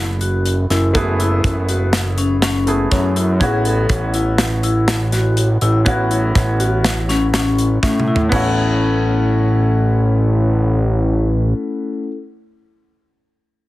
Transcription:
Already playing: F#1 A3 B3 E4 G#4
0.21 F#4, closed hi-hat
0.46 closed hi-hat
0.70 F#1 E4, snare, closed hi-hat
0.93 F#1 A3 B3 E4 F#4 G#4, kick, closed hi-hat
1.20 E4, closed hi-hat
1.44 F#1, kick, closed hi-hat
1.69 F#4, closed hi-hat
1.93 snare, closed hi-hat
2.18 C#4, closed hi-hat
2.42 C#4, snare, closed hi-hat
2.66 A3 B3 E4 G#4, closed hi-hat
2.91 F#2 C#4, kick, snare, closed hi-hat
3.16 E4, closed hi-hat
3.40 A1 B3 C#4 E4 F#4 G#4, kick, closed hi-hat
3.65 A4, closed hi-hat
3.89 A1, kick, closed hi-hat
4.14 E4, closed hi-hat
4.38 snare, closed hi-hat
4.63 E4, closed hi-hat
4.88 snare, closed hi-hat
5.12 F#4, snare, closed hi-hat
5.37 closed hi-hat
5.61 A1 E4, closed hi-hat
5.85 A1 B3 C#4 E4 F#4, kick, closed hi-hat
6.11 E4, closed hi-hat
6.35 A1, kick, snare, closed hi-hat
6.60 F#4, closed hi-hat
6.84 snare, closed hi-hat
7.09 C#4, snare, closed hi-hat
7.34 C#4, snare, closed hi-hat
7.58 closed hi-hat
7.83 A2 C#4, kick, snare
8.00 mid tom
8.08 E4
8.16 floor tom
8.29 A1 A3 B3 C#4, kick, crash
8.33 C#4 E4 F#4
8.40 E4 A4

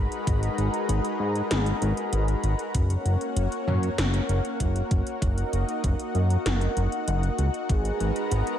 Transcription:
Already playing: G#3 D#4 F#4 A#4 B4
0.12 closed hi-hat
0.27 G#1, kick, closed hi-hat
0.43 closed hi-hat
0.58 G#1, closed hi-hat
0.74 closed hi-hat
0.89 G#1, closed hi-hat
1.05 closed hi-hat
1.20 G#2
1.35 closed hi-hat
1.51 G#1, snare, closed hi-hat
1.66 closed hi-hat
1.82 G#1, closed hi-hat
1.97 closed hi-hat
2.13 G#1, closed hi-hat
2.28 closed hi-hat
2.44 G#1, closed hi-hat
2.59 closed hi-hat
2.74 F#1 A#3 C#4 F#4, kick, closed hi-hat
2.90 closed hi-hat
3.05 F#1, closed hi-hat
3.21 closed hi-hat
3.36 F#1, closed hi-hat
3.52 closed hi-hat
3.67 F#2, mid tom
3.83 closed hi-hat
3.98 F#1, snare, closed hi-hat
4.14 closed hi-hat
4.29 F#1, closed hi-hat
4.45 closed hi-hat
4.60 F#1, kick, closed hi-hat
4.76 closed hi-hat
4.91 F#1, kick, closed hi-hat
5.07 closed hi-hat
5.22 F#1 D#4, kick, closed hi-hat
5.38 closed hi-hat
5.53 F#1, closed hi-hat
5.69 closed hi-hat
5.84 F#1, kick, closed hi-hat
5.99 closed hi-hat
6.15 F#2, closed hi-hat
6.30 closed hi-hat
6.46 F#1, snare, closed hi-hat
6.61 closed hi-hat
6.77 F#1, closed hi-hat
6.92 closed hi-hat
7.08 F#1, closed hi-hat
7.23 closed hi-hat
7.38 C#2, closed hi-hat
7.54 closed hi-hat
7.69 G#1 G#3 B3 G#4 A#4, kick, closed hi-hat
7.85 closed hi-hat
8.00 G#1, closed hi-hat
8.16 closed hi-hat
8.31 G#1, closed hi-hat
8.47 closed hi-hat

